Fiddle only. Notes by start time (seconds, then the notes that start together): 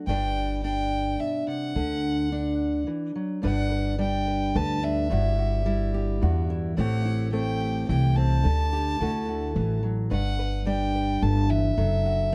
0.06 G5
0.63 G5
1.20 E5
1.48 F#5
3.45 F#5
4.01 G5
4.56 A5
4.84 E5
6.77 F#5
7.32 G5
7.89 G5
8.16 A5
10.11 F#5
10.67 G5
11.22 A5
11.50 E5